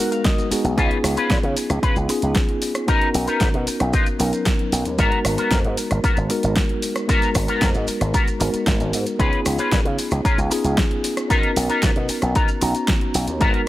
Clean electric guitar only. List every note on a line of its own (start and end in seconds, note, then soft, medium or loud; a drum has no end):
0.00 0.11 F#5 medium
0.11 0.24 F5 medium
0.11 muted clean electric guitar stroke soft
0.25 0.74 D#5 medium
0.51 muted clean electric guitar stroke soft
0.77 0.97 C#4 loud
0.77 0.97 F4 medium
0.77 0.98 B4 loud
1.17 1.37 C#4 medium
1.17 1.37 F4 medium
1.17 1.37 B4 medium
1.56 muted clean electric guitar stroke soft
1.82 1.96 C#4 medium
1.82 1.96 F4 medium
1.82 1.96 B4 medium
2.09 muted clean electric guitar stroke medium
2.22 muted clean electric guitar stroke soft
2.62 muted clean electric guitar stroke soft
2.88 3.08 B3 loud
2.88 3.08 D#4 loud
2.88 3.08 A#4 loud
3.27 3.47 B3 medium
3.27 3.47 D#4 medium
3.27 3.48 A#4 medium
3.67 muted clean electric guitar stroke soft
3.93 4.07 B3 medium
3.93 4.07 D#4 medium
3.93 4.07 F4 medium
4.19 muted clean electric guitar stroke medium
4.33 muted clean electric guitar stroke soft
4.72 muted clean electric guitar stroke soft
4.98 5.18 B3 loud
4.98 5.18 F#4 loud
4.98 5.19 A#4 loud
5.38 5.58 B3 medium
5.38 5.58 F#4 medium
5.38 5.58 A#4 medium
5.77 muted clean electric guitar stroke soft
6.03 6.17 B3 medium
6.03 6.17 F#4 medium
6.03 6.17 A#4 medium
6.30 muted clean electric guitar stroke medium
6.43 muted clean electric guitar stroke soft
6.82 muted clean electric guitar stroke soft
7.08 7.29 B3 loud
7.08 7.29 F#4 loud
7.08 7.29 A#4 loud
7.48 7.68 B3 medium
7.48 7.68 F#4 medium
7.48 7.69 A#4 medium
7.87 muted clean electric guitar stroke soft
8.14 8.27 B3 medium
8.14 8.28 F#4 medium
8.14 8.28 A#4 medium
8.40 muted clean electric guitar stroke medium
8.53 muted clean electric guitar stroke soft
8.93 muted clean electric guitar stroke soft
9.19 9.39 C#4 loud
9.19 9.39 F4 loud
9.19 9.40 B4 loud
9.59 9.79 C#4 medium
9.59 9.79 F4 medium
9.59 9.79 B4 loud
9.98 muted clean electric guitar stroke soft
10.24 10.38 C#4 medium
10.24 10.38 F4 medium
10.24 10.38 A#4 medium
10.50 muted clean electric guitar stroke medium
10.64 muted clean electric guitar stroke soft
11.03 muted clean electric guitar stroke soft
11.30 11.50 B3 loud
11.30 11.50 D#4 loud
11.30 11.50 A#4 loud
11.69 11.89 B3 medium
11.69 11.89 D#4 medium
11.69 11.90 A#4 loud
12.09 muted clean electric guitar stroke soft
12.35 12.48 B3 medium
12.35 12.49 D#4 medium
12.35 12.49 A#4 medium
12.61 muted clean electric guitar stroke medium
12.74 muted clean electric guitar stroke soft
13.14 muted clean electric guitar stroke soft
13.40 13.60 B3 loud
13.40 13.60 F#4 loud
13.40 13.61 A#4 loud